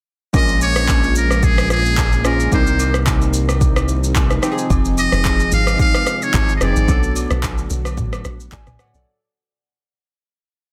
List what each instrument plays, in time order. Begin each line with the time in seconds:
0.33 analog synth bass A#1, string machine C#3 F3 G#3 A#3 F4, synth keys G#3 C#4 F4 A#4, muted trumpet D#5, kick, high agogo, shaker
0.49 shaker
0.61 muted trumpet C#5, high agogo, shaker
0.76 cross-stick, shaker
0.89 kick, clap, high agogo, low woodblock, shaker
1.03 shaker
1.15 muted trumpet A#4, shaker
1.31 cross-stick, high agogo, shaker
1.43 muted trumpet G#4, kick, shaker
1.58 cross-stick, high agogo, shaker
1.70 muted trumpet G#4, cross-stick, shaker
1.86 shaker
1.97 kick, clap, high agogo, low woodblock, shaker
2.12 shaker
2.24 synth keys G#3 C#4 F4 G#4, muted trumpet A#4, cross-stick, high agogo, shaker
2.40 shaker
2.51 analog synth bass C2, string machine C3 D#3 G3 D#4, synth keys G3 C4 D#4 A#4, muted trumpet C5, kick, high agogo, shaker
2.67 shaker
2.80 high agogo, shaker
2.94 cross-stick, shaker
3.07 kick, clap, high agogo, low woodblock, shaker
3.22 shaker
3.34 shaker
3.49 cross-stick, high agogo, shaker
3.61 kick, shaker
3.76 cross-stick, high agogo, shaker
3.88 shaker
4.04 shaker
4.16 kick, clap, high agogo, low woodblock, shaker
4.30 cross-stick, shaker
4.42 synth keys F3 C4 D#4 G4, string machine F3 G#3, cross-stick, high agogo, shaker
4.52 synth keys G#4
4.58 shaker
4.70 log drum bass F1, kick, high agogo, shaker
4.85 shaker
4.98 muted trumpet D#5, high agogo, shaker
5.12 log drum bass F1, cross-stick, shaker
5.25 kick, clap, high agogo, low woodblock, shaker
5.40 shaker
5.52 log drum bass G#1, muted trumpet F5, shaker
5.67 cross-stick, high agogo, shaker
5.79 muted trumpet F5, kick, shaker
5.94 cross-stick, high agogo, shaker
6.07 cross-stick, shaker
6.22 muted trumpet C#5, shaker
6.34 log drum bass G#1, kick, clap, high agogo, low woodblock, shaker
6.49 shaker
6.56 synth keys F3, muted trumpet D#5
6.61 log drum bass F1, synth keys C4 D#4 G#4, muted trumpet D5, cross-stick, high agogo, shaker
6.76 log drum bass G#1, shaker
6.88 log drum bass B1, string machine D3 F#3 A3 B3 F#4, synth keys F#3 B3 D4 A4, kick, high agogo, shaker
7.03 shaker
7.16 high agogo, shaker
7.31 log drum bass B1, cross-stick, shaker
7.43 kick, clap, high agogo, low woodblock, shaker
7.58 shaker
7.70 log drum bass B1, shaker
7.85 cross-stick, high agogo, shaker
7.97 kick, mid tom, shaker
8.13 cross-stick, high agogo, shaker
8.25 log drum bass A#1, cross-stick, shaker
8.40 shaker
8.52 log drum bass A1, synth keys D5 G#5, kick, clap, high agogo, low woodblock, shaker
8.67 log drum bass B1, cross-stick, mid tom, shaker
8.79 synth keys C#5 F#5, cross-stick, high agogo, shaker
8.94 log drum bass B1, synth keys A4 D5, shaker